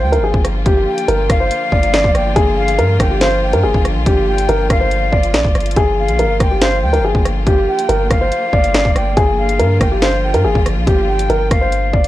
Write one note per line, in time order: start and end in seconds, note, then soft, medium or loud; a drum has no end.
0.00 0.19 D2 loud
0.00 9.13 D3 medium
0.00 9.13 F3 medium
0.00 5.72 A#3 medium
0.00 9.13 F4 medium
0.00 0.11 C5 medium
0.00 0.22 G5 loud
0.12 0.21 A#4 medium
0.12 closed hi-hat medium
0.18 0.33 G1 loud
0.24 0.42 G#4 medium
0.34 0.65 G1 loud
0.34 kick medium
0.45 cross-stick medium
0.45 closed hi-hat medium
0.66 0.86 G1 loud
0.66 1.06 G4 loud
0.66 kick loud
0.66 closed hi-hat medium
0.87 1.27 G5 medium
0.98 closed hi-hat medium
1.08 1.29 G1 loud
1.08 1.38 A#4 medium
1.08 closed hi-hat medium
1.30 1.50 G1 loud
1.30 2.11 F5 medium
1.30 kick loud
1.30 cross-stick loud
1.30 closed hi-hat medium
1.40 1.70 C5 medium
1.51 closed hi-hat medium
1.72 2.03 G1 loud
1.72 1.90 D5 medium
1.72 kick medium
1.83 closed hi-hat medium
1.94 2.34 D5 medium
1.94 finger snap loud
1.94 snare loud
2.04 2.14 F1 loud
2.04 kick loud
2.15 2.35 G1 loud
2.15 2.35 G5 medium
2.15 cross-stick medium
2.15 closed hi-hat medium
2.36 2.80 G1 loud
2.36 2.76 G#4 loud
2.36 kick loud
2.36 closed hi-hat medium
2.58 2.97 F5 medium
2.68 closed hi-hat medium
2.79 2.99 G2 loud
2.79 3.09 A#4 medium
2.79 closed hi-hat medium
3.00 3.55 G1 loud
3.00 3.20 G5 medium
3.00 kick loud
3.00 cross-stick loud
3.00 closed hi-hat medium
3.11 3.20 G4 medium
3.21 3.51 C5 medium
3.21 3.41 F5 medium
3.21 finger snap medium
3.21 snare loud
3.21 closed hi-hat medium
3.42 3.62 G5 medium
3.53 3.65 G2 loud
3.53 3.62 A#4 medium
3.53 closed hi-hat medium
3.63 3.74 G1 loud
3.63 3.82 G#4 medium
3.74 3.97 G1 loud
3.74 kick medium
3.85 cross-stick medium
3.85 closed hi-hat medium
3.96 4.06 A#1 loud
4.06 4.47 G1 loud
4.06 4.46 G4 loud
4.06 kick loud
4.06 closed hi-hat medium
4.28 4.68 G5 medium
4.38 closed hi-hat medium
4.49 4.69 G1 loud
4.49 4.79 A#4 medium
4.49 closed hi-hat medium
4.70 5.11 G1 loud
4.70 5.30 F5 medium
4.70 kick loud
4.70 cross-stick loud
4.70 closed hi-hat medium
4.80 5.10 C5 medium
4.91 closed hi-hat medium
5.12 5.35 G1 loud
5.12 5.30 D5 medium
5.12 kick medium
5.23 closed hi-hat medium
5.34 5.44 A#1 loud
5.34 5.74 D5 medium
5.34 finger snap loud
5.34 snare loud
5.45 5.55 G1 loud
5.45 kick medium
5.55 5.76 G1 loud
5.55 cross-stick medium
5.55 closed hi-hat soft
5.60 closed hi-hat medium
5.66 closed hi-hat medium
5.71 closed hi-hat medium
5.76 6.10 G1 loud
5.76 12.08 A#3 medium
5.76 6.17 G#4 loud
5.76 kick loud
5.76 closed hi-hat medium
5.98 6.38 F5 medium
6.08 6.26 A#1 loud
6.08 closed hi-hat medium
6.19 6.49 A#4 medium
6.19 closed hi-hat medium
6.24 6.39 G1 loud
6.40 6.84 G1 loud
6.40 6.61 G5 medium
6.40 kick loud
6.40 cross-stick loud
6.40 closed hi-hat medium
6.51 6.60 G4 medium
6.61 6.92 C5 medium
6.61 6.82 F5 loud
6.61 finger snap loud
6.61 snare loud
6.61 closed hi-hat medium
6.83 7.00 D2 loud
6.83 7.03 G5 loud
6.93 7.02 A#4 medium
6.93 closed hi-hat medium
6.99 7.14 G1 loud
7.05 7.22 G#4 medium
7.15 7.45 G1 loud
7.15 kick loud
7.25 cross-stick medium
7.25 closed hi-hat medium
7.47 7.67 G1 loud
7.47 7.87 G4 loud
7.47 kick loud
7.47 closed hi-hat medium
7.68 8.08 G5 medium
7.79 closed hi-hat medium
7.89 8.10 G1 loud
7.89 8.19 A#4 medium
7.89 closed hi-hat medium
8.10 8.31 G1 loud
8.10 8.92 F5 medium
8.10 kick loud
8.10 cross-stick loud
8.10 closed hi-hat medium
8.21 8.51 C5 medium
8.32 closed hi-hat medium
8.53 8.84 G1 loud
8.53 8.71 D5 medium
8.53 kick loud
8.64 closed hi-hat medium
8.74 9.15 D5 medium
8.74 finger snap loud
8.74 snare loud
8.85 8.95 F1 loud
8.85 kick loud
8.96 9.16 G1 loud
8.96 9.16 G5 medium
8.96 cross-stick medium
8.96 closed hi-hat medium
9.17 9.61 G1 loud
9.17 12.08 D3 medium
9.17 12.08 F3 medium
9.17 12.08 F4 medium
9.17 9.57 G#4 loud
9.17 kick loud
9.17 closed hi-hat medium
9.39 9.78 F5 medium
9.49 closed hi-hat medium
9.59 9.80 G2 loud
9.59 9.89 A#4 medium
9.59 closed hi-hat medium
9.81 10.35 G1 loud
9.81 10.01 G5 medium
9.81 kick loud
9.81 cross-stick loud
9.81 closed hi-hat medium
9.92 10.01 G4 medium
10.02 10.32 C5 medium
10.02 10.22 F5 medium
10.02 finger snap medium
10.02 snare loud
10.02 closed hi-hat medium
10.23 10.43 G5 medium
10.34 10.46 G2 loud
10.34 10.43 A#4 medium
10.34 closed hi-hat medium
10.45 10.55 G1 loud
10.45 10.63 G#4 medium
10.55 10.78 G1 loud
10.55 kick medium
10.66 cross-stick medium
10.66 closed hi-hat medium
10.76 10.87 A#1 loud
10.87 11.28 G1 loud
10.87 11.27 G4 medium
10.87 kick loud
10.87 closed hi-hat medium
11.08 11.48 G5 medium
11.19 closed hi-hat medium
11.30 11.50 G1 loud
11.30 11.60 A#4 medium
11.30 closed hi-hat medium
11.51 11.92 G1 loud
11.51 12.08 F5 medium
11.51 kick loud
11.51 cross-stick loud
11.51 closed hi-hat medium
11.61 11.91 C5 medium
11.72 closed hi-hat medium
11.93 12.08 G1 loud
11.93 12.08 D5 medium
11.93 kick loud
12.04 closed hi-hat medium